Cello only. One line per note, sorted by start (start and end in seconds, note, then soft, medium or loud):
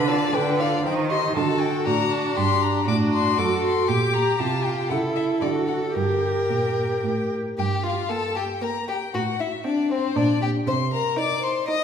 0.00 0.29 D3 medium
0.35 0.80 D3 medium
0.86 1.30 D#3 medium
1.36 1.83 D3 medium
1.86 2.33 A2 medium
2.37 2.84 G2 medium
2.87 3.35 A2 medium
3.38 3.85 F#2 medium
3.89 4.36 A#2 medium
4.40 4.87 C3 medium
4.91 5.39 C#3 soft
5.41 5.92 D3 medium
5.95 6.46 G2 medium
6.50 7.00 A#2 soft
7.04 7.54 A2 soft
7.58 7.99 G2 medium
9.14 9.55 A2 medium
10.16 10.56 A#2 medium
10.67 11.07 C3 medium